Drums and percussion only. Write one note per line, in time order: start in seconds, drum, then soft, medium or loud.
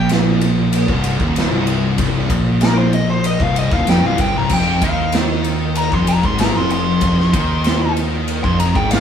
0.09 snare loud
0.09 ride loud
0.41 ride medium
0.73 ride loud
0.88 kick loud
1.04 ride medium
1.20 kick loud
1.36 snare loud
1.36 ride loud
1.67 ride medium
1.98 kick loud
1.98 ride loud
2.30 kick loud
2.30 ride medium
2.61 snare loud
2.61 ride medium
2.93 ride medium
3.24 ride loud
3.40 kick loud
3.56 ride medium
3.72 kick loud
3.72 snare soft
3.87 snare loud
3.87 ride loud
4.18 kick loud
4.18 ride medium
4.49 kick loud
4.49 crash loud
4.82 kick loud
4.82 ride medium
5.12 snare loud
5.12 ride loud
5.44 ride medium
5.75 ride loud
5.92 kick loud
6.07 ride medium
6.23 kick loud
6.38 snare loud
6.38 ride loud
6.70 ride medium
7.01 kick loud
7.01 ride loud
7.20 snare soft
7.33 kick loud
7.33 ride medium
7.64 snare loud
7.64 ride loud
7.97 ride medium
8.28 ride loud
8.44 kick loud
8.60 ride medium
8.75 kick loud
8.91 snare loud
8.91 ride loud